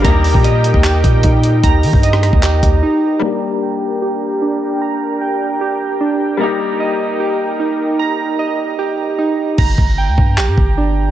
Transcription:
<<
  \new Staff \with { instrumentName = "Synth keys" } { \time 4/4 \key g \minor \tempo 4 = 151 bes''4 ees''4 g'4 ees'4 | bes''4 ees''4 g'4 ees'4 | bes''4 g''4 g'4 d'4 | bes''4 g''4 g'4 d'4 |
bes''4 ees''4 g'4 ees'4 | bes''4 ees''4 g'4 ees'4 | bes''4 g''4 g'4 d'4 | }
  \new Staff \with { instrumentName = "Analog synth pad" } { \time 4/4 \key g \minor << { <g' g''>1~ | <g' g''>1 | <g' g''>1~ | <g' g''>1~ |
<g' g''>1~ | <g' g''>1 | r1 | } \\ { <ees' bes'>1~ | <ees' bes'>1 | <d' bes'>1~ | <d' bes'>1 |
<ees' bes'>1~ | <ees' bes'>1 | r1 | } >> }
  \new Staff \with { instrumentName = "Grand piano" } { \time 4/4 \key g \minor <g bes ees' g'>1~ | <g bes ees' g'>1 | <g bes d' g'>1~ | <g bes d' g'>1 |
<g bes ees' g'>1~ | <g bes ees' g'>1 | r1 | }
  \new Staff \with { instrumentName = "808-style bass" } { \clef bass \time 4/4 \key g \minor ees,8. bes,4 ees,8. bes,8 bes,4 | ees,8 ees16 g,4 ees,8. ees,8 r4 | r1 | r1 |
r1 | r1 | g,,8 g,,8. d,16 g,8 bes,,16 g,16 g,,4. | }
  \new DrumStaff \with { instrumentName = "Drums" } \drummode { \time 4/4 <hh bd>8 hho16 bd16 hh8 hh16 bd16 <hc hh>8 <hh bd>8 <hh bd>8 hh8 | <hh bd>8 hho16 bd16 hh16 ss16 <hh ss>16 bd16 <hc hh>8 <hh bd>8 r4 | r4 r4 r4 r4 | r4 r4 r4 r4 |
r4 r4 r4 r4 | r4 r4 r4 r4 | <cymc bd>8 bd8 r8 bd8 hc8 bd8 r4 | }
>>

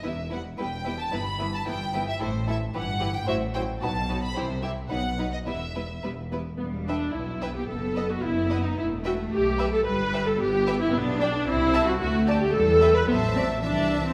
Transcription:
<<
  \new Staff \with { instrumentName = "Violin section" } { \time 2/4 \key e \minor \tempo 4 = 111 e''8 fis''8 g''8. a''16 | b''8. a''16 g''8. e''16 | c''8 e''8 fis''8. g''16 | e''8 g''8 a''8. b''16 |
c''8 e''8 fis''8. dis''16 | e''4 r4 | r8 g''8 r8 g''8 | r8 fis''8 r8 fis''8 |
r8 g''8 r8 g''8 | r8 g''8 r8 g''8 | \key a \dorian r8 g''8 r8 a''8 | r8 a''8 r8 g''8 |
a''4 a''4 | }
  \new Staff \with { instrumentName = "Violin section" } { \time 2/4 \key e \minor << { <e' b'>8 <e' b'>8 <e' b'>8 <e' b'>8 | <e' b'>8 <e' b'>8 <e' b'>8 <e' b'>8 | <e' a'>8 <e' a'>8 <g' b'>8 <g' b'>8 | <fis' c''>8 <fis' c''>8 <fis' b'>8 <fis' b'>8 |
<e' g'>8 <e' g'>8 <dis' b'>8 <dis' b'>8 | <e' b'>8 <e' b'>8 <e' b'>8 <e' b'>8 | r8 e''8 r8 e''8 | r8 dis''8 r8 dis''8 |
r8 e''8 r8 e''8 | r8 e''8 r8 e''8 | \key a \dorian r8 d''8 r8 a''8 | r8 a''8 r8 e''8 |
e''4 e''4 | } \\ { r2 | r2 | r2 | r2 |
r2 | r2 | r8 b'8 r8 b'8 | r8 b'8 r8 b'8 |
r8 b'8 r8 b'8 | r8 b'8 r8 b'8 | r8 d''8 r8 e''8 | r8 d''8 r8 b'8 |
c''8 d''8 e''4 | } >> }
  \new Staff \with { instrumentName = "Viola section" } { \time 2/4 \key e \minor <g b>8 <g b>8 <g b>8 <g b>8 | <e b>8 <e b>8 <e b>8 <e b>8 | <e e'>8 <e e'>8 <e e'>8 <e e'>8 | <fis e'>8 <fis e'>8 <fis dis'>8 <fis dis'>8 |
<e e'>8 <e e'>8 <fis b>8 <fis b>8 | <g b>8 <g b>8 <g b>8 <g b>8 | b8 d'8 e'8. g'16 | a'8. fis'16 e'8. dis'16 |
e'8 fis'8 g'8. a'16 | b'8. a'16 g'8. e'16 | \key a \dorian b8 d'8 e'8. fis'16 | fis'8 g'8 a'8. b'16 |
b8 c'8 d'8. c'16 | }
  \new Staff \with { instrumentName = "Cello section" } { \clef bass \time 2/4 \key e \minor e,4 e,4 | g,4 g,4 | a,4 g,4 | a,4 b,4 |
c4 b,4 | e,4 e,4 | g4 b4~ | b2 |
a2 | g4 b4 | \key a \dorian d'4 c'4 | a4 g4 |
fis4 e4 | }
  \new Staff \with { instrumentName = "Double bass section" } { \clef bass \time 2/4 \key e \minor e,,4 e,,4 | g,,4 g,,4 | a,,4 g,,4 | a,,4 b,,4 |
c,4 b,,4 | e,,4 e,,4 | e,,4 b,,4 | fis,,4 fis,,4 |
e,,4 b,,4 | g,,4 g,,4 | \key a \dorian b,,4 c,4 | d,4 e,4 |
a,,4 c,4 | }
>>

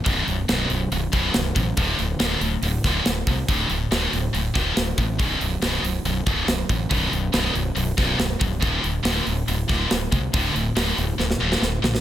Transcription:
<<
  \new Staff \with { instrumentName = "Distorted electric guitar" } { \clef bass \time 4/4 \key d \major \tempo 4 = 140 <b,, fis, b,>8 <b,, fis,>8 <b,, fis, b,>8 <b,, fis,>8 <b,, fis,>8 <b,, fis, b,>8 <b,, fis,>8 <b,, fis,>8 | <d, a, d>8 <d, a,>8 <d, a, d>8 <d, a,>8 <d, a,>8 <d, a, d>8 <d, a,>8 <d, a,>8 | <d, a, d>8 <d, a,>8 <d, a, d>8 <d, a,>8 <d, a,>8 <d, a, d>8 <d, a,>8 <d, a,>8 | <b,, fis, b,>8 <b,, fis,>8 <b,, fis, b,>8 <b,, fis,>8 <b,, fis,>8 <b,, fis, b,>8 <b,, fis,>8 <b,, fis,>8 |
<b,, fis, b,>8 <b,, fis,>8 <b,, fis, b,>8 <b,, fis,>8 <b,, fis,>8 <b,, fis, b,>8 <b,, fis,>8 <b,, fis,>8 | <d, a, d>8 <d, a,>8 <d, a, d>8 <d, a,>8 <d, a,>8 <d, a, d>8 <d, a,>8 <d, a,>8 | <d, a, d>8 <d, a,>8 <d, a, d>8 <d, a,>8 <d, a,>8 <d, a, d>8 <d, a,>8 <d, a,>8 | }
  \new Staff \with { instrumentName = "Fingered electric bass" } { \clef bass \time 4/4 \key d \major b,,,8 b,,,8 b,,,8 b,,,8 b,,,8 b,,,8 b,,,8 a,,8 | d,,8 d,,8 d,,8 d,,8 d,,8 d,,8 d,,8 c,8 | d,,8 d,,8 d,,8 d,,8 d,,8 d,,8 d,,8 a,,8 | b,,,8 b,,,8 b,,,8 b,,,8 b,,,8 b,,,8 b,,,8 a,,8 |
b,,,8 b,,,8 b,,,8 b,,,8 b,,,8 b,,,8 b,,,8 c,,8 | d,,8 d,,8 d,,8 d,,8 d,,8 d,,8 d,,8 c,8 | d,,8 d,,8 d,,8 d,,8 d,,8 d,,8 d,,8 ais,,8 | }
  \new DrumStaff \with { instrumentName = "Drums" } \drummode { \time 4/4 <hho bd>8 hho8 <hho sn>8 hho8 hho8 <hho bd>8 <hho sn>8 <hho bd>8 | <hho bd>8 hho8 <hho sn>8 hho8 hho8 <hho bd sn>8 <hho sn>8 <hho bd>8 | <hho bd>8 hho8 <hho sn>8 hho8 hho8 <hho bd sn>8 <hho sn>8 <hho bd>8 | <hho bd>8 hho8 <hho sn>8 hho8 hho8 <hho bd>8 <hho sn>8 <hho bd>8 |
<hho bd>8 hho8 <hho sn>8 hho8 hho8 <hho bd sn>8 <hho sn>8 <hho bd>8 | <hho bd>8 hho8 <hho sn>8 hho8 hho8 <hho bd sn>8 <hho sn>8 <hho bd>8 | <hho bd>8 hho8 <hho sn>8 hho8 sn16 sn8 sn16 sn8 sn16 sn16 | }
>>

